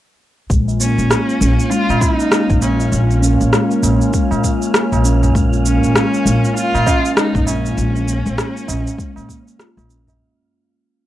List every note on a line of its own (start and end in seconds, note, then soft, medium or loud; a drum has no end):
0.49 0.94 A#1 medium
0.49 0.67 G#3 medium
0.49 10.16 A#3 medium
0.49 10.21 F4 medium
0.49 10.16 F4 medium
0.49 10.16 C#5 medium
0.49 10.21 F5 medium
0.49 10.16 G#5 medium
0.49 kick loud
0.49 shaker soft
0.68 tabla tin soft
0.68 shaker soft
0.80 0.97 A#3 medium
0.80 1.71 C#4 medium
0.80 shaker medium
0.98 1.08 A#1 medium
0.98 shaker soft
1.11 cross-stick medium
1.11 shaker soft
1.29 shaker soft
1.41 1.56 A#1 medium
1.41 1.58 C#4 medium
1.41 tabla tin soft
1.41 shaker medium
1.60 shaker soft
1.70 1.87 G#3 medium
1.70 2.01 F4 loud
1.70 shaker soft
1.89 1.99 A#2 medium
1.89 2.01 A#3 medium
1.89 tabla na medium
1.89 shaker soft
2.00 2.19 C#4 medium
2.00 2.61 D#4 loud
2.00 kick loud
2.00 tabla na medium
2.00 shaker medium
2.20 tabla tin soft
2.20 shaker soft
2.32 2.49 G#3 medium
2.32 cross-stick loud
2.32 shaker soft
2.50 2.89 A#1 medium
2.50 kick medium
2.50 tabla ge medium
2.50 shaker soft
2.61 2.79 A#3 medium
2.61 3.18 C#4 medium
2.61 tabla na medium
2.61 shaker medium
2.80 tabla tin medium
2.80 shaker soft
2.92 3.36 A#1 medium
2.92 shaker soft
3.11 shaker soft
3.23 3.40 C#4 loud
3.23 shaker medium
3.41 3.51 A#1 medium
3.41 shaker soft
3.53 3.69 G#3 loud
3.53 cross-stick medium
3.53 shaker soft
3.71 3.83 A#3 medium
3.71 shaker soft
3.83 3.98 A#1 medium
3.83 4.00 C#4 medium
3.83 tabla na medium
3.83 shaker medium
4.02 shaker soft
4.13 4.31 G#3 medium
4.13 kick loud
4.13 shaker soft
4.31 4.42 A#2 medium
4.31 tabla na medium
4.31 shaker soft
4.44 4.61 A#3 medium
4.44 kick medium
4.44 shaker medium
4.62 shaker soft
4.74 cross-stick loud
4.74 shaker soft
4.92 5.32 A#1 medium
4.92 tabla na medium
4.92 tabla tin medium
4.92 shaker soft
5.04 5.22 C#4 medium
5.04 shaker medium
5.23 tabla na medium
5.23 tabla ge medium
5.23 shaker soft
5.35 5.78 A#1 loud
5.35 5.51 G#3 medium
5.35 kick loud
5.35 shaker soft
5.53 5.65 A#3 medium
5.53 tabla tin soft
5.53 shaker soft
5.65 5.82 C#4 medium
5.65 6.52 C#4 medium
5.65 shaker medium
5.83 5.93 A#1 medium
5.83 shaker soft
5.95 6.13 G#3 medium
5.95 cross-stick loud
5.95 shaker soft
6.14 shaker soft
6.25 6.41 A#1 medium
6.25 6.43 A#3 medium
6.25 tabla tin soft
6.25 shaker medium
6.45 shaker soft
6.57 7.13 F4 loud
6.57 shaker soft
6.74 6.84 A#2 medium
6.74 tabla na medium
6.74 shaker soft
6.86 7.04 C#4 loud
6.86 kick loud
6.86 tabla na medium
6.86 shaker medium
7.04 tabla tin soft
7.04 shaker soft
7.17 7.33 G#3 medium
7.17 7.49 D#4 loud
7.17 cross-stick loud
7.17 shaker soft
7.35 7.74 A#1 loud
7.35 7.46 A#3 medium
7.35 kick loud
7.35 tabla ge medium
7.35 shaker soft
7.47 7.64 C#4 medium
7.47 9.59 C#4 medium
7.47 tabla na medium
7.47 shaker medium
7.65 tabla tin soft
7.65 shaker soft
7.77 8.21 A#1 loud
7.77 7.94 G#3 medium
7.77 shaker soft
7.96 tabla tin soft
7.96 shaker soft
8.07 8.25 A#3 medium
8.07 shaker medium
8.26 8.36 A#1 medium
8.26 shaker soft
8.38 cross-stick loud
8.38 shaker soft
8.57 shaker soft
8.68 8.84 A#1 loud
8.68 8.85 C#4 medium
8.68 tabla na medium
8.68 shaker medium
8.87 shaker soft
8.98 9.15 G#3 medium
8.98 kick loud
8.98 shaker soft
9.16 9.27 A#2 medium
9.16 9.27 A#3 medium
9.16 tabla na medium
9.16 shaker soft
9.29 9.39 A#3 loud
9.29 kick medium
9.29 shaker medium
9.48 shaker soft
9.59 9.75 F4 medium
9.59 cross-stick medium
9.59 shaker soft
9.77 10.16 A#1 medium
9.77 tabla na medium
9.77 tabla tin medium
9.77 shaker soft
9.89 10.06 C#4 medium
9.89 shaker medium
10.07 tabla na medium
10.07 tabla ge loud
10.07 shaker soft